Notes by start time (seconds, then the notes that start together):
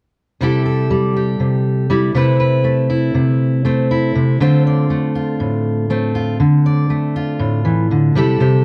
0.41 C3 G3 E4 G4 A4
0.66 A4
0.90 G3
1.16 G4
1.40 C3
1.90 G3 E4
2.15 C3 A3 C4 E4 B4
2.40 B4
2.64 A3
2.90 E4
3.14 C3
3.65 A3 C4
3.91 E4
4.15 C3
4.40 D3 A3 C4 F4 C5
4.67 D5
4.90 A3
5.15 F4
5.40 A2
5.90 A3 C4
6.15 F4
6.40 D3
6.66 D5
6.90 A3
7.16 F4
7.39 A2
7.65 E3
7.91 D3
8.15 C3 G3 E4 G4 A4
8.40 C3 G4